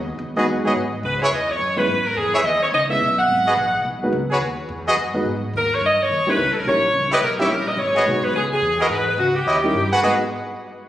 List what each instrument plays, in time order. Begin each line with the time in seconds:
Already playing: upright bass D#2
0.19 upright bass E2
0.36 grand piano G#3 B3 D#4 F#4 B4, trumpet section F#4 G#4 B4 D#5
0.47 upright bass F#2
0.65 grand piano G#3 B3 D#4 F#4 C#5, trumpet section F#4 G#4 B4 D#5
0.75 upright bass G#2
1.03 upright bass C#2, saxophone section B4
1.18 trumpet section E4 G#4 B4 C#5, saxophone section C5 C#5
1.31 upright bass E2, saxophone section D#5
1.51 saxophone section C#5
1.59 upright bass F#2
1.76 grand piano G#3 B3 C#4 E4 B4, saxophone section B4
1.87 upright bass G#2
2.06 saxophone section A#4
2.15 upright bass E2, saxophone section G#4
2.33 trumpet section E4 G#4 B4 C#5, saxophone section E5, muted upright bass stroke
2.44 upright bass D#2, saxophone section D#5
2.62 saxophone section C#5
2.72 upright bass C#2, saxophone section D#5
2.89 grand piano G#3 B3 C#4 E4 B4, saxophone section E5
3.01 upright bass B1
3.19 saxophone section F#5
3.28 upright bass G#1
3.46 trumpet section F#4 G#4 B4 D#5
3.57 upright bass A#1
3.85 upright bass B1
4.02 grand piano G#3 B3 D#4 F#4 B4
4.13 upright bass C#2
4.30 trumpet section F#4 G#4 B4 C#5
4.41 upright bass D#2
4.69 upright bass E2
4.87 trumpet section F#4 G#4 B4 D#5
4.97 upright bass F#2
5.14 grand piano G#3 B3 D#4 F#4 B4
5.25 upright bass G#2
5.54 upright bass D#2, saxophone section A#4
5.74 saxophone section C#5
5.81 upright bass G2
5.85 saxophone section D#5
6.03 saxophone section C#5
6.10 upright bass D#2
6.27 grand piano G3 C#4 D#4 E4 A#4, saxophone section B4, muted upright bass stroke
6.37 upright bass C#2
6.53 saxophone section A4, muted upright bass stroke
6.58 saxophone section A#4
6.65 upright bass A#1, grand piano G3 C#4 D#4 E4 A#4, saxophone section C#5
6.93 upright bass C#2
7.11 trumpet section E4 G4 C#5 D#5, saxophone section B4
7.21 upright bass B1, saxophone section A#4
7.39 grand piano G3 C#4 D#4 E4 C#5, trumpet section E4 G4 C#5 E5, saxophone section G4
7.49 upright bass A#1, saxophone section A#4
7.68 saxophone section D#5
7.77 upright bass G#1, saxophone section C#5
7.95 trumpet section F#4 G#4 B4 D#5
8.05 upright bass B1, grand piano G#3 B3 D#4 F#4 B4
8.23 saxophone section B4, muted upright bass stroke
8.34 upright bass C#2, saxophone section G#4
8.53 saxophone section G#4
8.62 upright bass E2
8.79 trumpet section F#4 G#4 B4 D#5, saxophone section A#4
8.90 upright bass G#2, saxophone section B4
9.08 saxophone section B4
9.18 upright bass C#2, saxophone section F#4
9.36 saxophone section G4
9.46 upright bass D#2, trumpet section E4 G4 C#5 D#5
9.64 grand piano G3 C#4 D#4 E4 A#4
9.74 upright bass G2
9.92 trumpet section F#4 G#4 B4 F#5
10.02 upright bass G#1, grand piano G#3 B3 D#4 F#4 B4, saxophone section G#3 D#4 F#4 B4, trumpet section F#4 G#4 B4 D#5